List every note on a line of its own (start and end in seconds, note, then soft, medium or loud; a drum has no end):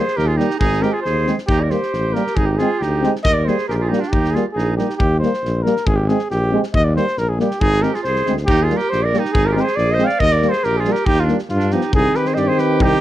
0.00 0.18 G#4 medium
0.00 0.19 C5 medium
0.08 snare soft
0.16 0.41 D#2 loud
0.16 0.29 G4 medium
0.16 0.28 A#4 loud
0.16 snare soft
0.27 0.38 F4 medium
0.27 0.38 G#4 medium
0.36 0.48 G3 medium
0.36 0.48 A#3 medium
0.36 0.59 D#4 medium
0.36 0.58 G4 medium
0.36 snare soft
0.50 snare soft
0.58 0.84 G#1 loud
0.58 0.84 D#4 medium
0.58 0.83 G#4 loud
0.58 kick loud
0.73 snare soft
0.82 0.92 G#3 medium
0.82 0.91 C4 medium
0.82 0.95 G4 medium
0.82 0.93 A#4 medium
0.82 snare soft
0.92 1.05 F4 medium
0.92 1.01 G#4 medium
1.02 1.29 D#2 loud
1.02 1.36 G#4 medium
1.02 1.34 C5 medium
1.02 snare soft
1.26 1.36 G#3 medium
1.26 1.35 C4 medium
1.26 snare soft
1.38 snare soft
1.47 1.73 D#2 loud
1.47 1.65 D#4 medium
1.47 1.62 G4 loud
1.47 kick medium
1.60 1.73 A#4 medium
1.60 1.72 D5 medium
1.69 1.78 G3 soft
1.69 1.80 A#3 medium
1.69 2.17 G4 medium
1.69 2.15 C5 medium
1.69 snare soft
1.83 snare soft
1.92 2.17 A1 loud
1.92 snare soft
2.14 2.24 G3 medium
2.14 2.23 A#3 medium
2.14 2.39 G4 medium
2.14 2.37 A#4 medium
2.14 snare soft
2.27 snare soft
2.35 2.60 G#1 loud
2.35 2.50 D#4 medium
2.35 2.47 G#4 loud
2.35 kick medium
2.46 2.59 G4 medium
2.50 2.61 D#4 medium
2.57 2.68 C4 medium
2.57 2.84 F4 medium
2.57 2.81 G#4 medium
2.57 snare soft
2.61 2.69 G#3 medium
2.79 3.05 D2 loud
2.79 3.14 D#4 medium
2.79 3.13 G4 medium
2.79 snare soft
3.03 3.13 G#3 medium
3.03 3.12 C4 medium
3.03 snare soft
3.16 snare soft
3.24 3.49 D#2 loud
3.24 3.36 A#4 medium
3.24 3.35 D#5 loud
3.24 kick loud
3.34 3.49 A#4 medium
3.34 3.46 D5 medium
3.45 3.56 G3 medium
3.45 3.56 A#3 medium
3.45 3.68 G#4 medium
3.45 3.68 C5 medium
3.45 snare soft
3.58 snare soft
3.68 3.93 A#1 loud
3.68 3.75 F4 medium
3.68 3.72 G4 medium
3.68 3.75 G#4 medium
3.68 3.72 A#4 medium
3.68 snare soft
3.73 3.77 G4 medium
3.73 3.78 A#4 medium
3.77 3.87 F4 medium
3.77 3.82 G4 soft
3.77 3.88 G#4 medium
3.77 3.82 A#4 medium
3.87 4.02 D#4 medium
3.87 3.90 F4 medium
3.87 4.01 G4 medium
3.87 3.90 G#4 medium
3.91 4.01 G3 medium
3.91 3.99 A#3 medium
3.91 snare soft
4.00 4.13 D4 medium
4.00 4.10 F4 medium
4.00 snare soft
4.09 4.36 D#2 loud
4.09 4.36 D#4 medium
4.09 4.32 G4 loud
4.13 kick medium
4.25 snare soft
4.31 4.43 A#3 medium
4.31 4.45 F4 medium
4.31 4.43 G#4 medium
4.35 4.44 G3 medium
4.35 snare soft
4.53 4.80 A#1 loud
4.53 4.76 D#4 medium
4.53 4.74 G#4 medium
4.58 snare soft
4.76 4.87 G3 medium
4.76 4.87 A#3 medium
4.76 4.97 D#4 medium
4.76 4.96 G4 medium
4.76 snare soft
4.90 snare soft
4.97 5.24 D#2 loud
4.97 5.19 G4 loud
4.97 kick medium
5.20 5.30 G3 medium
5.20 5.32 A#3 medium
5.20 5.64 C5 medium
5.20 snare soft
5.34 snare soft
5.43 5.67 A#1 loud
5.43 snare soft
5.63 5.74 G3 medium
5.63 5.74 A#3 medium
5.63 5.88 A#4 medium
5.63 snare soft
5.77 snare soft
5.87 6.11 G#1 loud
5.87 5.98 G#4 loud
5.87 kick loud
5.96 6.10 G4 medium
6.08 6.18 G#3 medium
6.08 6.18 C4 medium
6.08 6.30 G#4 medium
6.08 snare soft
6.19 snare soft
6.30 6.54 A#1 loud
6.30 6.61 G4 loud
6.30 snare soft
6.52 6.62 G#3 medium
6.52 6.61 C4 medium
6.63 snare soft
6.74 6.98 D#2 loud
6.74 6.86 D#5 loud
6.74 kick medium
6.85 6.96 D5 medium
6.96 7.05 G3 medium
6.96 7.04 A#3 medium
6.96 7.20 C5 medium
6.96 snare soft
7.07 snare soft
7.17 7.41 A#1 medium
7.17 7.31 A#4 medium
7.17 snare soft
7.29 7.40 G#4 medium
7.39 7.49 G3 medium
7.39 7.48 A#3 medium
7.39 7.62 G4 medium
7.39 snare soft
7.51 snare soft
7.60 7.85 G#1 loud
7.60 7.85 D#4 medium
7.60 7.84 G#4 loud
7.60 kick medium
7.73 snare soft
7.82 7.91 G#3 medium
7.82 7.91 C4 medium
7.82 7.96 G4 medium
7.82 7.95 A#4 medium
7.82 snare soft
7.94 8.05 F4 medium
7.94 8.03 G#4 medium
7.94 snare soft
8.04 8.24 C2 medium
8.04 8.35 G#4 medium
8.04 8.34 C5 loud
8.04 snare soft
8.16 snare soft
8.26 8.46 D2 medium
8.26 8.35 G#3 medium
8.26 8.35 C4 medium
8.26 snare soft
8.37 snare soft
8.46 8.72 D#2 loud
8.46 8.66 D#4 medium
8.46 8.64 G4 loud
8.46 kick loud
8.63 8.78 F4 medium
8.63 8.78 G#4 medium
8.70 8.78 G3 medium
8.70 8.78 A#3 medium
8.70 snare soft
8.76 8.92 G4 medium
8.76 8.91 A#4 medium
8.76 snare soft
8.90 9.16 A#1 loud
8.90 9.06 G4 medium
8.90 9.04 C5 loud
8.90 snare soft
9.03 9.21 A#4 medium
9.03 9.20 D5 medium
9.13 9.21 G3 medium
9.13 9.22 A#3 medium
9.13 snare soft
9.18 9.33 D#4 medium
9.18 9.34 G4 medium
9.25 snare soft
9.32 9.58 G#1 loud
9.32 9.50 D#4 medium
9.32 9.48 G#4 loud
9.32 kick loud
9.46 9.54 G4 medium
9.46 9.53 A#4 medium
9.51 9.56 F4 medium
9.51 9.66 G4 medium
9.51 9.55 G#4 medium
9.51 9.62 A#4 medium
9.56 9.64 G#3 medium
9.56 9.64 C4 medium
9.56 snare soft
9.61 9.78 G#4 medium
9.61 9.77 C5 medium
9.67 snare soft
9.76 10.01 A#1 loud
9.76 9.96 G#4 medium
9.76 9.93 D5 loud
9.76 snare soft
9.91 10.08 C5 medium
9.91 10.06 D#5 loud
9.98 10.08 G#3 medium
9.98 10.08 C4 medium
9.98 snare soft
10.05 10.21 D5 medium
10.05 10.22 F5 loud
10.09 snare soft
10.19 10.45 D#2 loud
10.19 10.36 A#4 loud
10.19 10.34 D#5 loud
10.19 kick medium
10.33 10.53 A#4 medium
10.33 10.50 D5 loud
10.42 10.52 G3 medium
10.42 10.51 A#3 medium
10.42 snare soft
10.49 10.67 G#4 medium
10.49 10.66 C5 loud
10.49 snare soft
10.64 10.88 A#1 loud
10.64 10.82 G4 medium
10.64 10.79 A#4 medium
10.64 snare soft
10.77 10.94 F4 medium
10.77 10.94 G#4 loud
10.85 10.95 G3 medium
10.85 10.94 A#3 medium
10.85 snare soft
10.92 11.08 G4 medium
10.92 11.07 A#4 loud
10.92 snare soft
11.05 11.31 D#2 loud
11.05 11.25 D#4 loud
11.05 11.21 G4 loud
11.05 kick loud
11.17 11.36 F4 loud
11.17 snare soft
11.24 11.37 A#3 medium
11.24 11.38 D4 medium
11.28 11.39 G3 medium
11.28 snare soft
11.39 snare soft
11.49 11.74 G2 loud
11.49 11.74 F4 medium
11.49 snare soft
11.53 11.74 D4 medium
11.60 snare soft
11.71 11.81 F3 medium
11.71 11.81 B3 medium
11.71 11.94 D#4 medium
11.71 11.94 G4 medium
11.71 snare soft
11.81 snare soft
11.93 12.06 C2 loud
11.93 13.01 D#3 medium
11.93 13.01 C4 medium
11.93 12.16 D#4 medium
11.93 12.18 G#4 loud
11.93 kick loud
12.14 12.29 G4 medium
12.14 12.29 B4 loud
12.14 snare soft
12.25 12.35 G#4 medium
12.25 12.36 C5 medium
12.25 snare soft
12.34 12.48 G2 medium
12.34 12.51 G4 medium
12.34 12.38 C5 medium
12.34 12.40 D#5 medium
12.34 snare soft
12.38 12.50 D5 medium
12.48 12.60 G#4 medium
12.48 12.62 C5 medium
12.58 12.84 G4 medium
12.58 12.84 B4 loud
12.58 snare soft
12.80 12.92 C2 loud
12.80 13.01 D#4 medium
12.80 13.01 G4 loud
12.80 kick loud